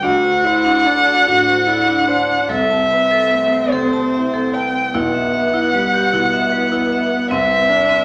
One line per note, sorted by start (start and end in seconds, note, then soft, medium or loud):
0.02 2.46 D2 medium
0.02 0.15 D4 medium
0.02 0.45 F#4 medium
0.02 2.50 F#5 loud
0.23 0.36 C5 medium
0.44 0.88 E4 medium
0.44 0.57 C5 medium
0.44 1.11 C5 medium
0.65 0.77 D4 medium
0.85 1.51 A3 medium
0.85 1.28 D4 medium
0.85 0.98 A4 medium
1.07 1.19 F#4 medium
1.27 1.92 A2 medium
1.27 1.39 D4 medium
1.27 1.68 F#4 medium
1.47 1.59 C5 medium
1.67 2.33 D4 medium
1.67 2.07 E4 medium
1.67 1.79 A4 medium
1.88 2.00 D4 medium
2.07 2.51 D4 medium
2.07 2.48 C5 medium
2.07 2.20 C5 medium
2.49 4.90 C2 medium
2.49 4.94 C4 medium
2.49 2.61 A4 medium
2.49 3.73 E5 loud
2.70 2.82 A5 medium
2.91 3.56 B4 medium
2.91 3.03 A5 medium
3.11 3.23 A4 medium
3.32 3.97 A3 medium
3.32 3.44 E5 medium
3.52 3.64 C5 medium
3.72 4.38 C3 medium
3.72 3.84 A4 medium
3.72 4.55 C5 loud
3.93 4.05 A5 medium
4.14 4.79 E4 medium
4.14 4.26 E5 medium
4.34 4.46 A4 medium
4.54 4.94 B4 medium
4.54 4.95 G5 loud
4.54 4.66 A5 medium
4.94 7.27 B1 medium
4.94 6.11 B3 medium
4.94 5.06 E4 medium
4.94 7.29 F#5 loud
5.14 5.26 E5 medium
5.34 5.97 B4 medium
5.34 5.46 E5 medium
5.54 5.66 E4 loud
5.73 6.36 G3 medium
5.73 5.86 B4 medium
5.93 6.05 G4 medium
6.13 6.76 B2 medium
6.13 7.32 B3 medium
6.13 6.25 E4 loud
6.33 6.45 E5 medium
6.52 7.16 E4 medium
6.52 6.64 B4 medium
6.72 6.84 E4 medium
6.92 7.31 B4 medium
6.92 7.04 E5 medium
7.30 8.05 C2 medium
7.30 7.71 C4 medium
7.30 7.43 C4 loud
7.30 8.05 E5 loud
7.50 7.62 B4 medium
7.70 8.05 D4 medium
7.70 7.82 B4 medium
7.70 8.05 B4 medium
7.89 8.01 C4 loud